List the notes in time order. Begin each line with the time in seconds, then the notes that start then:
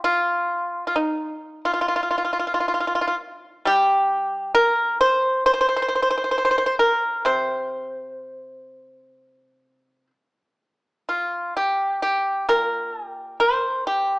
Already playing: C3
0.04 F4
0.87 F4
0.96 D#4
1.65 F4
1.73 F4
1.81 F4
1.88 F4
1.96 F4
2.03 F4
2.11 F4
2.18 F4
2.25 F4
2.33 F4
2.39 F4
2.47 F4
2.54 F4
2.60 F4
2.68 F4
2.74 F4
2.80 F4
2.87 F4
2.95 F4
3.01 F4
3.07 F4
3.65 G3 G4
4.55 A#4
5.01 C5
5.46 C5
5.54 C5
5.61 C5
5.69 C5
5.76 C5
5.82 C5
5.88 C5
5.95 C5
6.02 C5
6.10 C5
6.18 C5
6.24 C5
6.31 C5
6.38 C5
6.45 C5
6.51 C5
6.58 C5
6.66 C5
6.79 A#4
7.25 C3 C5
11.09 F4
11.57 G4
12.02 G4
12.49 A#2 A#4
13.08 G4
13.40 C5
13.87 G4